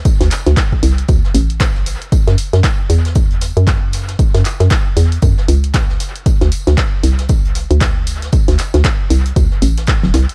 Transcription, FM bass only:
0.21 0.29 D2 loud
0.47 0.55 D2 loud
0.83 1.05 C2 medium
1.09 1.21 D2 medium
1.34 1.97 A1 medium
2.28 2.36 F#2 loud
2.53 2.62 F#2 loud
2.90 3.52 E2 medium
3.57 4.16 F#2 medium
4.34 4.43 F#2 loud
4.60 4.69 F#2 loud
4.97 5.19 E2 medium
5.22 5.35 F#2 medium
5.48 5.97 C#2 medium
6.41 6.50 D2 loud
6.67 6.76 D2 loud
7.03 7.66 C2 medium
7.71 8.30 D2 medium
8.48 8.57 D2 loud
8.74 8.83 D2 loud
9.10 9.32 C2 medium
9.36 9.49 D2 medium
9.62 10.03 A1 medium
10.03 10.12 D1 loud
10.14 10.26 C2 loud

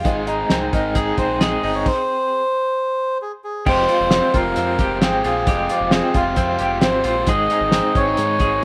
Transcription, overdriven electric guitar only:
0.04 0.27 G#3 medium
0.04 0.28 C4 medium
0.04 0.27 D#4 medium
0.04 0.26 G#4 medium
0.27 0.50 C4 soft
0.27 0.50 D#4 soft
0.27 0.50 G#4 medium
0.50 0.73 G#3 medium
0.50 0.73 C4 medium
0.50 0.73 D#4 medium
0.50 0.71 G#4 medium
0.72 0.95 C4 soft
0.72 0.95 D#4 soft
0.72 0.95 G#4 medium
0.95 1.18 G#3 medium
0.95 1.18 C4 medium
0.95 1.19 D#4 medium
0.95 1.17 G#4 medium
1.19 1.40 C4 soft
1.19 1.41 D#4 soft
1.19 1.41 G#4 medium
1.41 1.63 G#3 medium
1.41 1.64 C4 medium
1.41 1.63 D#4 medium
1.41 1.62 G#4 medium
1.63 1.87 C4 soft
1.63 1.86 D#4 medium
1.63 1.86 G#4 medium
3.66 3.89 F2 medium
3.66 3.89 C3 medium
3.66 3.89 G#3 medium
3.66 3.89 C4 medium
3.66 3.88 F4 medium
3.66 3.88 G4 medium
3.89 4.10 G#3 soft
3.89 4.11 C4 soft
3.89 4.12 F4 soft
3.89 4.12 G4 medium
4.12 4.34 G#3 medium
4.12 4.34 C4 medium
4.12 4.33 F4 medium
4.12 4.33 G4 medium
4.34 4.55 G#3 soft
4.34 4.56 C4 soft
4.34 4.56 F4 medium
4.34 4.56 G4 soft
4.56 4.79 F2 medium
4.56 4.79 C3 medium
4.56 4.79 G#3 medium
4.56 4.79 C4 medium
4.56 4.79 F4 medium
4.56 4.78 G4 medium
4.79 5.00 G#3 soft
4.79 5.01 C4 soft
4.79 5.01 F4 medium
4.79 5.02 G4 medium
5.01 5.24 G#3 medium
5.01 5.24 C4 medium
5.01 5.24 F4 medium
5.01 5.23 G4 medium
5.24 5.46 G#3 medium
5.24 5.46 C4 medium
5.24 5.46 F4 medium
5.24 5.47 G4 medium
5.46 5.69 F2 medium
5.46 5.70 C3 medium
5.46 5.70 G#3 medium
5.46 5.69 C4 medium
5.46 5.69 F4 medium
5.46 5.68 G4 medium
5.69 5.91 G#3 soft
5.69 5.91 C4 soft
5.69 5.92 F4 soft
5.69 5.92 G4 medium
5.92 6.15 G#3 medium
5.92 6.15 C4 medium
5.92 6.14 F4 medium
5.92 6.14 G4 medium
6.15 6.36 G#3 soft
6.15 6.36 C4 soft
6.15 6.37 F4 soft
6.15 6.37 G4 medium
6.37 6.60 F2 medium
6.37 6.60 C3 medium
6.37 6.60 G#3 medium
6.37 6.60 C4 medium
6.37 6.59 F4 medium
6.37 6.59 G4 medium
6.60 6.81 G#3 soft
6.60 6.82 C4 soft
6.60 6.83 F4 soft
6.60 6.83 G4 soft
6.83 7.05 G#3 medium
6.83 7.05 C4 medium
6.83 7.05 F4 medium
6.83 7.04 G4 medium
7.05 7.27 G#3 soft
7.05 7.27 C4 soft
7.05 7.28 F4 medium
7.05 7.28 G4 medium
7.28 7.50 G#2 medium
7.28 7.51 D#3 medium
7.28 7.51 G#3 medium
7.28 7.51 C4 medium
7.28 7.51 D#4 medium
7.28 7.50 G#4 medium
7.51 7.72 G#3 soft
7.51 7.72 C4 medium
7.51 7.73 D#4 medium
7.51 7.73 G#4 medium
7.73 7.96 G#3 medium
7.73 7.96 C4 medium
7.73 7.95 D#4 medium
7.73 7.94 G#4 medium
7.95 8.18 G#3 soft
7.95 8.18 C4 soft
7.95 8.18 D#4 medium
7.95 8.18 G#4 medium
8.18 8.41 G#2 medium
8.18 8.41 D#3 medium
8.18 8.41 G#3 medium
8.18 8.40 C4 medium
8.18 8.40 D#4 loud
8.18 8.39 G#4 medium
8.40 8.62 G#3 medium
8.40 8.63 C4 medium
8.40 8.63 D#4 medium
8.40 8.63 G#4 medium

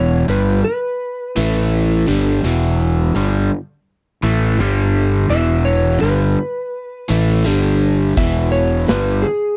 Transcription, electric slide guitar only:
0.00 0.29 C#5 medium
0.30 0.63 B4 medium
0.64 2.04 B4 medium
5.30 5.67 E5 medium
5.65 5.99 C#5 medium
6.01 7.77 B4 medium
8.17 8.51 E5 medium
8.52 8.88 C#5 medium
8.88 9.26 B4 medium
9.22 9.57 G#4 medium

